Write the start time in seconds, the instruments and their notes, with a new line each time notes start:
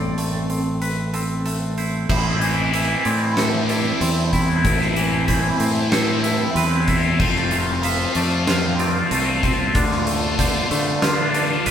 Already playing: fingered electric bass A1, clean electric guitar A2 A3 C4 E4 D5, ambient pad C4 A4
0.18 clean electric guitar A3, closed hi-hat
0.50 clean electric guitar C4, closed hi-hat
0.82 clean electric guitar B4, closed hi-hat
1.14 clean electric guitar C4 A4, closed hi-hat
1.46 clean electric guitar A3 A4, closed hi-hat
1.78 clean electric guitar E4 C5, closed hi-hat
2.09 fingered electric bass A1, clean electric guitar A2 C5, overdriven electric guitar C4 E4, ambient pad C4 E4 A5, kick, crash
2.17 overdriven electric guitar C4 E4
2.25 overdriven electric guitar C4 E4
2.33 overdriven electric guitar C4 E4
2.40 clean electric guitar E3 C5, overdriven electric guitar C4 E4, closed hi-hat
2.48 overdriven electric guitar C4 E4
2.54 overdriven electric guitar C4 E4
2.63 overdriven electric guitar C4 E4
2.71 clean electric guitar E3 E5, overdriven electric guitar C4 E4, closed hi-hat
2.78 overdriven electric guitar C4 E4
2.87 overdriven electric guitar C4 E4
2.94 overdriven electric guitar C4 E4
3.02 fingered electric bass A2, overdriven electric guitar C4 E4, clean electric guitar C4 D5, closed hi-hat
3.10 overdriven electric guitar C4 E4
3.18 overdriven electric guitar C4 E4
3.24 overdriven electric guitar C4 E4
3.33 overdriven electric guitar C4 E4, snare, closed hi-hat
3.37 overdriven electric guitar C4, clean electric guitar A4 C5
3.41 overdriven electric guitar E4
3.47 overdriven electric guitar C4 E4
3.56 overdriven electric guitar C4 E4
3.62 overdriven electric guitar C4 E4
3.69 overdriven electric guitar C4 E4, clean electric guitar E4 D5, closed hi-hat
3.79 overdriven electric guitar C4 E4
3.87 overdriven electric guitar C4 E4
3.94 overdriven electric guitar C4 E4
4.01 fingered electric bass E2, clean electric guitar C4, overdriven electric guitar C4 E4, closed hi-hat
4.10 overdriven electric guitar C4 E4
4.17 overdriven electric guitar C4 E4
4.24 overdriven electric guitar C4 E4
4.32 overdriven electric guitar C4 E4, clean electric guitar E4, kick, closed hi-hat
4.40 overdriven electric guitar C4 E4
4.49 overdriven electric guitar C4 E4
4.56 overdriven electric guitar C4 E4
4.65 fingered electric bass A1, clean electric guitar A2, overdriven electric guitar C4 E4, kick, closed hi-hat
4.73 overdriven electric guitar C4 E4
4.80 overdriven electric guitar C4 E4, snare
4.88 overdriven electric guitar C4 E4
4.95 clean electric guitar E3, overdriven electric guitar C4 E4, closed hi-hat
5.03 overdriven electric guitar C4 E4
5.11 overdriven electric guitar C4 E4
5.19 overdriven electric guitar C4 E4
5.26 clean electric guitar E3 C5, overdriven electric guitar C4 E4, kick, closed hi-hat
5.34 overdriven electric guitar C4 E4
5.42 overdriven electric guitar C4 E4
5.50 overdriven electric guitar C4 E4
5.57 fingered electric bass A2, overdriven electric guitar C4 E4, clean electric guitar C4, closed hi-hat
5.65 overdriven electric guitar C4 E4
5.73 overdriven electric guitar C4 E4
5.80 overdriven electric guitar C4 E4
5.89 overdriven electric guitar C4 E4, clean electric guitar A4, snare, closed hi-hat
5.93 overdriven electric guitar C4, clean electric guitar C5
5.98 overdriven electric guitar E4
6.03 overdriven electric guitar C4 E4
6.12 overdriven electric guitar C4 E4
6.19 overdriven electric guitar C4 E4
6.23 overdriven electric guitar C4, clean electric guitar E4, closed hi-hat
6.28 overdriven electric guitar E4
6.34 overdriven electric guitar C4 E4
6.42 overdriven electric guitar C4 E4
6.50 overdriven electric guitar C4 E4
6.55 fingered electric bass E2, clean electric guitar C4 B4, overdriven electric guitar C4 E4, closed hi-hat
6.65 overdriven electric guitar C4 E4
6.73 overdriven electric guitar C4 E4
6.81 overdriven electric guitar C4 E4
6.87 overdriven electric guitar C4 E4, clean electric guitar E4 A4, kick, closed hi-hat
6.96 overdriven electric guitar C4 E4
7.04 overdriven electric guitar C4 E4
7.12 overdriven electric guitar C4 E4
7.19 fingered electric bass F1, clean electric guitar F2 C5, overdriven electric guitar C4 F4, ambient pad F4 A5, kick, crash
7.29 overdriven electric guitar C4 F4
7.35 overdriven electric guitar C4 F4, snare
7.43 overdriven electric guitar C4 F4
7.51 clean electric guitar C3 C5, overdriven electric guitar C4 F4, closed hi-hat
7.58 overdriven electric guitar C4 F4
7.67 overdriven electric guitar C4 F4
7.73 overdriven electric guitar C4 F4
7.81 clean electric guitar F3 E5, overdriven electric guitar C4 F4, closed hi-hat
7.90 overdriven electric guitar C4 F4
7.97 overdriven electric guitar C4 F4
8.04 overdriven electric guitar C4 F4
8.12 fingered electric bass F2, clean electric guitar A3, overdriven electric guitar C4 F4, closed hi-hat
8.16 clean electric guitar D5
8.21 overdriven electric guitar C4 F4
8.28 overdriven electric guitar C4 F4
8.35 overdriven electric guitar C4 F4
8.43 overdriven electric guitar C4 F4
8.47 clean electric guitar F4 C5, overdriven electric guitar F4, snare, closed hi-hat
8.52 overdriven electric guitar C4
8.59 overdriven electric guitar C4 F4
8.67 overdriven electric guitar C4 F4
8.75 overdriven electric guitar C4 F4
8.79 clean electric guitar C4 D5, overdriven electric guitar C4 F4, closed hi-hat
8.90 overdriven electric guitar C4 F4
8.98 overdriven electric guitar C4 F4
9.04 overdriven electric guitar C4 F4
9.11 fingered electric bass C2, clean electric guitar A3, overdriven electric guitar C4 F4, closed hi-hat
9.19 overdriven electric guitar C4 F4
9.29 overdriven electric guitar C4 F4
9.36 overdriven electric guitar C4 F4
9.43 clean electric guitar C4, overdriven electric guitar C4 F4, kick, closed hi-hat
9.52 overdriven electric guitar C4 F4
9.58 overdriven electric guitar C4 F4
9.66 overdriven electric guitar C4 F4
9.74 fingered electric bass D2, clean electric guitar D3, overdriven electric guitar D4 F4, ambient pad D5, kick, closed hi-hat
9.84 overdriven electric guitar D4 F4
9.91 overdriven electric guitar D4 F4, snare
9.99 overdriven electric guitar D4 F4
10.06 clean electric guitar A3, overdriven electric guitar D4 F4, closed hi-hat
10.14 overdriven electric guitar D4 F4
10.21 overdriven electric guitar D4 F4
10.29 overdriven electric guitar D4 F4
10.38 clean electric guitar D3 C5, overdriven electric guitar D4 F4, kick, closed hi-hat
10.45 overdriven electric guitar D4 F4
10.53 overdriven electric guitar D4 F4
10.60 overdriven electric guitar D4 F4
10.68 fingered electric bass D3, clean electric guitar A3, overdriven electric guitar D4 F4, closed hi-hat
10.75 overdriven electric guitar D4 F4
10.84 overdriven electric guitar D4 F4
10.91 overdriven electric guitar D4 F4
10.99 overdriven electric guitar D4 F4, clean electric guitar F4 C5, snare, closed hi-hat
11.07 overdriven electric guitar D4 F4
11.14 overdriven electric guitar D4 F4
11.22 overdriven electric guitar D4 F4
11.30 overdriven electric guitar D4 F4
11.34 clean electric guitar D4, overdriven electric guitar D4, closed hi-hat
11.39 overdriven electric guitar F4
11.46 overdriven electric guitar D4 F4
11.53 overdriven electric guitar D4 F4
11.61 overdriven electric guitar D4 F4
11.66 fingered electric bass B1, clean electric guitar A3 B4, closed hi-hat